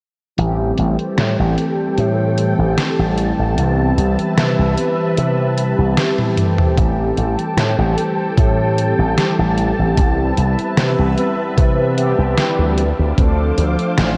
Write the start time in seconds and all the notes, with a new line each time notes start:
0.37 A1 E3 G3 A3 C4 G4 A4 G5 A5, closed hi-hat
0.78 A1, closed hi-hat
0.99 closed hi-hat
1.18 A2, snare, closed hi-hat
1.39 A1
1.58 closed hi-hat
1.98 A2, closed hi-hat
2.38 closed hi-hat
2.59 A1
2.78 snare, closed hi-hat
2.99 A1
3.18 closed hi-hat
3.39 A1
3.57 C2 E3 G3 B3 C4 G4 B4 E5, closed hi-hat
3.97 C2, closed hi-hat
4.19 closed hi-hat
4.37 C3, snare, closed hi-hat
4.59 C2
4.77 closed hi-hat
5.17 C3, closed hi-hat
5.58 closed hi-hat
5.79 C2
5.97 snare, closed hi-hat
6.19 high tom
6.37 E3 G3 A3 C4 G4 A4 G5, closed hi-hat, mid tom
6.58 mid tom
6.76 A1 E3 G3 A3 C4 G4 A4 G5 A5, kick, closed hi-hat
7.18 A1, closed hi-hat
7.39 closed hi-hat
7.57 A2, snare, closed hi-hat
7.78 A1
7.96 E3 G3 A3 C4 G4, closed hi-hat
8.38 A2, kick, closed hi-hat
8.78 closed hi-hat
8.99 A1
9.17 E3 G3 A3 C4 G4, snare, closed hi-hat
9.39 A1
9.58 closed hi-hat
9.79 A1
9.96 C2 E3 G3 B3 C4 G4 B4 E5, kick, closed hi-hat
10.37 C2, closed hi-hat
10.59 closed hi-hat
10.77 C3, snare, closed hi-hat
10.99 C2
11.17 E3 G3 B3 C4 B4, closed hi-hat
11.58 C3, kick, closed hi-hat
11.96 E3 G3 B3 C4 G4, closed hi-hat
12.18 C2
12.38 snare, closed hi-hat
12.59 D2
12.78 C5 F5 D6, closed hi-hat
12.99 D2
13.16 D2 F3 A3 C4 D4 A4, kick, closed hi-hat
13.58 D2, closed hi-hat
13.79 closed hi-hat
13.98 A1, snare, closed hi-hat